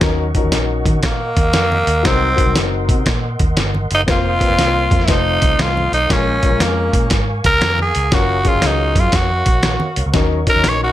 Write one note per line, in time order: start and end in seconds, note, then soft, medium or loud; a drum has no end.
0.01 0.31 D#2 loud
0.01 0.25 F#3 medium
0.01 0.25 C#4 medium
0.01 0.26 D#4 medium
0.01 4.04 A#4 medium
0.01 0.26 A#4 loud
0.01 4.03 D#5 medium
0.01 4.04 F#5 medium
0.01 2.03 C#6 medium
0.01 kick loud
0.01 snare loud
0.01 closed hi-hat medium
0.01 muted conga soft
0.34 0.39 F3 medium
0.34 1.00 C#4 medium
0.34 1.01 D#4 medium
0.34 1.01 A#4 medium
0.34 kick medium
0.34 closed hi-hat medium
0.34 muted conga soft
0.41 0.52 D#2 medium
0.41 1.03 F#3 medium
0.52 0.82 A#1 medium
0.52 snare medium
0.52 closed hi-hat medium
0.52 high conga medium
0.86 1.03 D#3 medium
0.86 kick medium
0.86 closed hi-hat medium
0.86 low conga medium
1.03 1.32 A#2 loud
1.03 2.08 A#3 loud
1.03 kick medium
1.03 snare loud
1.03 closed hi-hat medium
1.37 1.55 D#2 medium
1.37 kick medium
1.37 closed hi-hat medium
1.37 muted conga soft
1.53 1.84 F2 medium
1.53 snare loud
1.53 closed hi-hat medium
1.53 high conga medium
1.72 high conga medium
1.87 2.02 D#2 loud
1.87 closed hi-hat medium
2.03 2.34 C2 loud
2.03 2.28 F#3 medium
2.03 2.28 C4 medium
2.03 2.56 C4 loud
2.03 2.28 D#4 medium
2.03 2.29 A#4 medium
2.03 4.06 C6 medium
2.03 kick loud
2.03 snare loud
2.03 closed hi-hat medium
2.03 muted conga soft
2.36 3.02 F#3 medium
2.36 3.03 C4 medium
2.36 3.03 D#4 medium
2.36 3.03 A#4 medium
2.36 kick medium
2.36 closed hi-hat medium
2.36 muted conga soft
2.46 2.54 C2 loud
2.54 2.90 F#1 medium
2.54 snare loud
2.54 closed hi-hat medium
2.54 high conga medium
2.89 3.04 C3 medium
2.89 kick medium
2.89 closed hi-hat medium
3.06 3.35 A#2 medium
3.06 kick medium
3.06 snare loud
3.06 closed hi-hat medium
3.39 3.55 D#2 medium
3.39 kick medium
3.39 closed hi-hat medium
3.39 muted conga soft
3.39 low conga medium
3.57 3.86 G1 loud
3.57 snare loud
3.57 closed hi-hat medium
3.57 high conga medium
3.74 high conga medium
3.91 4.06 F#1 medium
3.91 4.01 D#4 loud
3.91 closed hi-hat medium
4.06 4.37 F1 loud
4.06 4.31 A#3 medium
4.06 4.31 C4 medium
4.06 4.31 F4 medium
4.06 5.09 A#4 medium
4.06 4.32 C5 medium
4.06 6.09 C5 medium
4.06 6.09 F5 medium
4.06 6.09 C6 medium
4.06 kick loud
4.06 snare loud
4.06 closed hi-hat medium
4.06 muted conga soft
4.11 5.06 F4 loud
4.40 5.05 A#3 medium
4.40 5.06 C4 medium
4.40 5.06 F4 medium
4.40 4.46 B4 medium
4.40 kick medium
4.40 closed hi-hat medium
4.40 muted conga soft
4.48 4.57 F1 medium
4.48 5.08 C5 medium
4.58 4.87 C2 medium
4.58 snare medium
4.58 closed hi-hat medium
4.58 high conga medium
4.91 5.06 F2 medium
4.91 kick medium
4.91 closed hi-hat medium
4.91 low conga medium
5.00 snare soft
5.05 5.37 F1 loud
5.05 5.96 A3 medium
5.05 5.96 C4 medium
5.05 5.12 E4 medium
5.05 kick medium
5.05 snare loud
5.05 closed hi-hat medium
5.09 5.63 D#4 loud
5.09 5.96 F4 medium
5.09 6.09 A4 medium
5.09 5.97 C5 medium
5.42 5.58 C2 medium
5.42 kick medium
5.42 closed hi-hat medium
5.42 muted conga soft
5.59 5.88 C2 medium
5.59 5.94 F4 loud
5.59 snare loud
5.59 closed hi-hat medium
5.59 high conga medium
5.77 high conga medium
5.92 6.07 B1 medium
5.92 6.14 D#4 loud
5.92 closed hi-hat medium
6.09 6.39 A#1 loud
6.09 6.33 G#3 medium
6.09 6.33 C#4 medium
6.09 6.63 C#4 medium
6.09 6.34 F4 medium
6.09 10.92 A#4 medium
6.09 6.34 A#4 medium
6.09 8.10 F5 medium
6.09 8.10 G#5 medium
6.09 10.10 C#6 medium
6.09 kick loud
6.09 snare loud
6.09 closed hi-hat medium
6.09 muted conga soft
6.43 7.08 G#3 medium
6.43 7.08 C#4 medium
6.43 7.09 F4 medium
6.43 7.09 A#4 medium
6.43 kick medium
6.43 closed hi-hat medium
6.43 muted conga soft
6.51 6.59 A#1 medium
6.60 6.89 F2 medium
6.60 7.12 A#3 medium
6.60 snare medium
6.60 closed hi-hat medium
6.60 high conga medium
6.93 7.11 A#2 medium
6.93 kick medium
6.93 closed hi-hat medium
7.10 7.40 G#2 medium
7.10 kick medium
7.10 snare loud
7.10 closed hi-hat medium
7.44 7.60 C#2 medium
7.44 7.77 A#4 loud
7.44 kick medium
7.44 closed hi-hat medium
7.44 muted conga soft
7.44 low conga medium
7.61 7.91 F2 loud
7.61 snare loud
7.61 closed hi-hat medium
7.61 high conga medium
7.79 8.15 G#4 medium
7.79 high conga medium
7.95 8.10 C#2 medium
7.95 closed hi-hat medium
8.12 8.41 F#1 loud
8.12 8.35 F#3 medium
8.12 8.36 C#4 medium
8.12 8.36 F4 medium
8.12 8.49 F#4 loud
8.12 8.36 A#4 medium
8.12 10.92 C#5 medium
8.12 10.12 F5 medium
8.12 kick loud
8.12 snare loud
8.12 closed hi-hat medium
8.12 muted conga soft
8.44 9.09 F#3 medium
8.44 9.10 C#4 medium
8.44 9.10 F4 medium
8.44 9.10 G#4 medium
8.44 kick medium
8.44 closed hi-hat medium
8.44 muted conga soft
8.48 8.68 F4 loud
8.55 8.62 F#1 medium
8.62 8.92 C#2 loud
8.62 snare loud
8.62 closed hi-hat medium
8.62 high conga medium
8.66 9.01 D#4 medium
8.96 9.11 F#2 medium
8.96 kick medium
8.96 closed hi-hat medium
8.96 low conga medium
9.00 9.17 F4 medium
9.12 9.42 F2 medium
9.12 9.98 F#4 medium
9.12 kick medium
9.12 snare loud
9.12 closed hi-hat medium
9.12 muted conga soft
9.46 9.76 A#1 medium
9.46 kick medium
9.46 closed hi-hat medium
9.46 muted conga medium
9.63 snare loud
9.63 closed hi-hat medium
9.63 high conga medium
9.80 high conga medium
9.96 10.04 C2 medium
9.96 closed hi-hat medium
10.06 10.14 C#2 medium
10.13 10.43 D#2 loud
10.13 10.37 F#3 medium
10.13 10.38 C#4 medium
10.13 10.38 D#4 medium
10.13 10.38 A#4 loud
10.13 10.92 D#5 medium
10.13 10.92 C#6 medium
10.13 kick loud
10.13 snare loud
10.13 closed hi-hat medium
10.13 muted conga soft
10.47 10.92 F#3 medium
10.47 10.92 C#4 medium
10.47 10.92 D#4 medium
10.47 10.92 A#4 medium
10.47 10.70 A#4 loud
10.47 kick medium
10.47 closed hi-hat medium
10.47 muted conga soft
10.56 10.63 D#2 medium
10.64 10.92 A#1 loud
10.64 snare loud
10.64 closed hi-hat medium
10.64 high conga medium
10.69 10.83 C#5 loud
10.84 10.92 F#4 loud